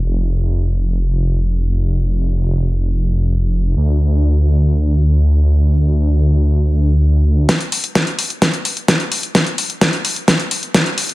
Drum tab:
HH |----------------|----------------|----------------|----------------|
SD |----------------|----------------|----------------|----------------|
BD |----------------|----------------|----------------|----------------|

HH |xxoxxxoxxxoxxxox|xxoxxxoxxxoxxxox|
SD |o---o---o---o---|o---o---o---o---|
BD |o---o---o---o---|o---o---o---o---|